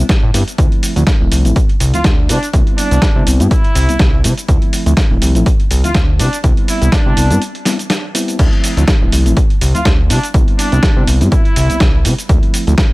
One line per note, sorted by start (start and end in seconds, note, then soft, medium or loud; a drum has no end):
0.09 kick loud
0.09 snare loud
0.09 closed hi-hat medium
0.09 shaker soft
0.23 0.31 A2 medium
0.34 0.43 G2 loud
0.34 0.41 G3 medium
0.34 0.41 B3 medium
0.34 0.41 C4 medium
0.34 0.41 E4 loud
0.34 open hi-hat loud
0.34 shaker medium
0.48 closed hi-hat soft
0.48 shaker soft
0.58 0.68 D2 loud
0.58 0.93 F3 medium
0.58 0.93 A3 medium
0.58 0.93 C4 medium
0.58 0.93 E4 loud
0.58 kick loud
0.58 closed hi-hat medium
0.58 shaker soft
0.72 closed hi-hat soft
0.83 open hi-hat loud
0.83 shaker medium
0.96 1.04 D2 medium
0.96 1.02 F3 medium
0.96 1.02 A3 medium
0.96 1.02 C4 medium
0.96 1.02 E4 medium
0.96 closed hi-hat soft
0.96 shaker soft
1.07 kick loud
1.07 snare loud
1.07 closed hi-hat medium
1.07 shaker soft
1.20 1.28 D1 medium
1.20 1.42 F3 medium
1.20 1.42 A3 medium
1.20 1.42 C4 medium
1.20 1.42 E4 medium
1.32 1.46 C2 medium
1.32 open hi-hat loud
1.32 shaker medium
1.45 1.53 A1 medium
1.45 1.54 F3 medium
1.45 1.54 A3 medium
1.45 1.54 C4 medium
1.45 1.54 E4 medium
1.45 closed hi-hat soft
1.45 shaker soft
1.56 kick loud
1.56 closed hi-hat medium
1.56 shaker soft
1.69 closed hi-hat soft
1.80 1.93 C2 medium
1.80 open hi-hat loud
1.80 shaker medium
1.93 2.03 D2 soft
1.93 1.99 F3 medium
1.93 1.99 A3 medium
1.93 2.00 C4 medium
1.93 2.00 E4 medium
1.93 2.10 F4 medium
1.93 closed hi-hat soft
1.93 shaker soft
2.04 2.31 D2 medium
2.04 kick loud
2.04 snare loud
2.04 closed hi-hat medium
2.04 shaker soft
2.29 2.38 C3 loud
2.29 2.36 G3 medium
2.29 2.36 B3 medium
2.29 2.36 C4 medium
2.29 2.47 D4 medium
2.29 2.36 E4 loud
2.29 open hi-hat loud
2.29 shaker medium
2.43 closed hi-hat soft
2.43 shaker soft
2.53 2.63 C2 loud
2.53 2.88 G3 medium
2.53 2.88 B3 medium
2.53 2.88 C4 medium
2.53 2.88 E4 loud
2.53 kick loud
2.53 closed hi-hat medium
2.53 shaker soft
2.67 closed hi-hat soft
2.78 3.27 D4 medium
2.78 open hi-hat medium
2.78 shaker medium
2.91 2.99 C2 medium
2.91 2.97 G3 medium
2.91 2.97 B3 medium
2.91 2.97 C4 medium
2.91 2.97 E4 medium
2.91 closed hi-hat medium
2.91 shaker soft
3.02 kick loud
3.02 snare loud
3.02 closed hi-hat medium
3.02 shaker soft
3.15 3.23 C3 medium
3.15 3.37 G3 medium
3.15 3.37 B3 medium
3.15 3.37 C4 medium
3.15 3.37 E4 medium
3.27 3.41 C2 medium
3.27 open hi-hat loud
3.27 shaker medium
3.40 3.48 G2 medium
3.40 3.49 G3 medium
3.40 3.49 B3 medium
3.40 3.49 C4 medium
3.40 3.49 E4 medium
3.40 closed hi-hat medium
3.40 shaker soft
3.51 4.20 E4 loud
3.51 kick loud
3.51 closed hi-hat medium
3.51 shaker soft
3.64 closed hi-hat soft
3.75 3.88 C2 medium
3.75 open hi-hat loud
3.75 shaker medium
3.88 3.98 C2 soft
3.88 3.94 G3 medium
3.88 3.94 B3 medium
3.88 3.95 C4 medium
3.88 3.95 E4 medium
3.88 closed hi-hat medium
3.88 shaker soft
3.99 4.26 C2 medium
3.99 kick loud
3.99 snare loud
3.99 closed hi-hat medium
3.99 shaker soft
4.24 4.34 C3 loud
4.24 4.31 G3 medium
4.24 4.31 B3 medium
4.24 4.31 C4 medium
4.24 4.31 E4 loud
4.24 open hi-hat loud
4.24 shaker medium
4.38 closed hi-hat soft
4.38 shaker soft
4.48 4.58 D2 loud
4.48 4.83 F3 medium
4.48 4.83 A3 medium
4.48 4.83 C4 medium
4.48 4.84 E4 loud
4.48 kick loud
4.48 closed hi-hat medium
4.48 shaker soft
4.62 closed hi-hat soft
4.73 open hi-hat loud
4.73 shaker medium
4.86 4.94 D2 medium
4.86 4.92 F3 medium
4.86 4.92 A3 medium
4.86 4.92 C4 medium
4.86 4.92 E4 loud
4.86 closed hi-hat medium
4.86 shaker soft
4.97 kick loud
4.97 snare loud
4.97 closed hi-hat medium
4.97 shaker soft
5.11 5.18 D1 medium
5.11 5.32 F3 medium
5.11 5.32 A3 medium
5.11 5.32 C4 medium
5.11 5.32 E4 medium
5.22 5.37 C2 medium
5.22 open hi-hat medium
5.22 shaker medium
5.35 5.43 A1 medium
5.35 5.44 F3 medium
5.35 5.44 A3 medium
5.35 5.44 C4 medium
5.35 5.44 E4 medium
5.35 closed hi-hat medium
5.35 shaker soft
5.46 kick loud
5.46 closed hi-hat medium
5.46 shaker soft
5.60 closed hi-hat soft
5.71 5.84 C2 medium
5.71 open hi-hat loud
5.71 shaker medium
5.84 5.93 D2 soft
5.84 5.89 F3 medium
5.84 5.90 A3 medium
5.84 5.90 C4 medium
5.84 5.90 E4 medium
5.84 6.00 F4 medium
5.84 closed hi-hat medium
5.84 shaker soft
5.95 6.21 D2 medium
5.95 kick loud
5.95 snare loud
5.95 closed hi-hat medium
5.95 shaker soft
6.19 6.29 C3 loud
6.19 6.26 G3 medium
6.19 6.26 B3 medium
6.19 6.26 C4 medium
6.19 6.37 D4 medium
6.19 6.26 E4 loud
6.19 open hi-hat medium
6.19 shaker medium
6.33 closed hi-hat medium
6.33 shaker soft
6.44 6.53 C2 loud
6.44 6.78 G3 medium
6.44 6.78 B3 medium
6.44 6.79 C4 medium
6.44 6.79 E4 loud
6.44 kick loud
6.44 closed hi-hat medium
6.44 shaker soft
6.57 closed hi-hat soft
6.68 6.91 E4 medium
6.68 open hi-hat loud
6.68 shaker medium
6.81 6.89 C2 medium
6.81 6.87 G3 medium
6.81 6.87 B3 medium
6.81 6.87 C4 medium
6.81 6.87 E4 medium
6.81 closed hi-hat medium
6.81 shaker soft
6.92 7.42 D4 loud
6.92 kick loud
6.92 snare loud
6.92 closed hi-hat medium
6.92 shaker soft
7.05 7.14 C3 medium
7.05 7.27 G3 medium
7.05 7.27 B3 medium
7.05 7.27 C4 medium
7.05 7.27 E4 medium
7.17 7.32 C2 medium
7.17 open hi-hat loud
7.17 shaker medium
7.30 7.38 G2 medium
7.30 7.39 G3 medium
7.30 7.39 B3 medium
7.30 7.39 C4 medium
7.30 7.40 E4 medium
7.30 closed hi-hat medium
7.30 shaker soft
7.42 closed hi-hat medium
7.42 shaker soft
7.55 closed hi-hat soft
7.65 7.77 G3 medium
7.65 7.77 B3 medium
7.65 7.77 C4 medium
7.65 7.77 E4 medium
7.65 snare medium
7.65 open hi-hat loud
7.65 shaker medium
7.79 closed hi-hat medium
7.79 shaker soft
7.90 snare loud
7.90 closed hi-hat medium
7.90 shaker soft
8.14 8.36 G3 medium
8.14 8.36 B3 medium
8.14 8.36 C4 medium
8.14 8.37 E4 loud
8.14 open hi-hat medium
8.14 shaker medium
8.28 closed hi-hat medium
8.28 shaker soft
8.39 8.48 D2 loud
8.39 8.73 F3 medium
8.39 8.74 A3 medium
8.39 8.74 C4 medium
8.39 8.74 E4 loud
8.39 kick loud
8.39 closed hi-hat medium
8.39 crash medium
8.39 shaker soft
8.53 closed hi-hat soft
8.64 open hi-hat loud
8.64 shaker medium
8.77 8.85 D2 medium
8.77 8.82 F3 medium
8.77 8.82 A3 medium
8.77 8.83 C4 medium
8.77 8.83 E4 loud
8.77 closed hi-hat medium
8.77 shaker soft
8.88 kick loud
8.88 snare loud
8.88 closed hi-hat medium
8.88 shaker soft
9.01 9.09 D1 medium
9.01 9.22 F3 medium
9.01 9.22 A3 medium
9.01 9.23 C4 medium
9.01 9.23 E4 medium
9.12 9.27 C2 medium
9.12 open hi-hat loud
9.12 shaker medium
9.25 9.33 A1 medium
9.25 9.34 F3 medium
9.25 9.35 A3 medium
9.25 9.35 C4 medium
9.25 9.35 E4 medium
9.25 closed hi-hat medium
9.25 shaker soft
9.37 kick loud
9.37 closed hi-hat medium
9.37 shaker soft
9.50 closed hi-hat soft
9.61 9.74 C2 medium
9.61 open hi-hat loud
9.61 shaker medium
9.74 9.83 D2 soft
9.74 9.80 F3 medium
9.74 9.80 A3 medium
9.74 9.80 C4 medium
9.74 9.80 E4 medium
9.74 9.91 F4 medium
9.74 closed hi-hat medium
9.74 shaker soft
9.85 10.11 D2 medium
9.85 kick loud
9.85 snare loud
9.85 closed hi-hat medium
9.85 shaker soft
10.10 10.19 C3 loud
10.10 10.17 G3 medium
10.10 10.17 B3 medium
10.10 10.17 C4 medium
10.10 10.28 D4 medium
10.10 10.17 E4 loud
10.10 open hi-hat loud
10.10 shaker medium
10.23 closed hi-hat medium
10.23 shaker soft
10.34 10.44 C2 loud
10.34 10.69 G3 medium
10.34 10.69 B3 medium
10.34 10.69 C4 medium
10.34 10.69 E4 loud
10.34 kick loud
10.34 closed hi-hat medium
10.34 shaker soft
10.48 closed hi-hat soft
10.59 11.07 D4 medium
10.59 open hi-hat loud
10.59 shaker medium
10.72 10.80 C2 medium
10.72 10.77 G3 medium
10.72 10.78 B3 medium
10.72 10.78 C4 medium
10.72 10.78 E4 medium
10.72 closed hi-hat medium
10.72 shaker soft
10.83 kick loud
10.83 snare loud
10.83 closed hi-hat medium
10.83 shaker soft
10.96 11.04 C3 medium
10.96 11.18 G3 medium
10.96 11.18 B3 medium
10.96 11.18 C4 medium
10.96 11.18 E4 medium
11.07 11.23 C2 medium
11.07 open hi-hat loud
11.07 shaker medium
11.21 11.29 G2 medium
11.21 11.30 G3 medium
11.21 11.30 B3 medium
11.21 11.30 C4 medium
11.21 11.30 E4 medium
11.21 closed hi-hat medium
11.21 shaker soft
11.32 12.01 E4 medium
11.32 kick loud
11.32 closed hi-hat medium
11.32 shaker soft
11.45 closed hi-hat soft
11.56 11.69 C2 medium
11.56 open hi-hat loud
11.56 shaker medium
11.70 11.79 C2 soft
11.70 11.75 G3 medium
11.70 11.75 B3 medium
11.70 11.75 C4 medium
11.70 11.76 E4 medium
11.70 closed hi-hat medium
11.70 shaker soft
11.80 12.07 C2 medium
11.80 kick loud
11.80 snare loud
11.80 closed hi-hat medium
11.80 shaker soft
12.05 12.14 C3 loud
12.05 12.12 G3 medium
12.05 12.12 B3 medium
12.05 12.12 C4 medium
12.05 12.12 E4 loud
12.05 open hi-hat loud
12.05 shaker medium
12.18 closed hi-hat medium
12.18 shaker soft
12.29 12.39 D2 loud
12.29 12.64 F3 medium
12.29 12.64 A3 medium
12.29 12.64 C4 medium
12.29 12.64 E4 loud
12.29 kick loud
12.29 closed hi-hat medium
12.29 shaker soft
12.43 closed hi-hat soft
12.54 open hi-hat loud
12.54 shaker medium
12.67 12.75 D2 medium
12.67 12.73 F3 medium
12.67 12.73 A3 medium
12.67 12.73 C4 medium
12.67 12.73 E4 medium
12.67 closed hi-hat soft
12.67 shaker soft
12.78 kick loud
12.78 snare loud
12.78 closed hi-hat medium
12.78 shaker soft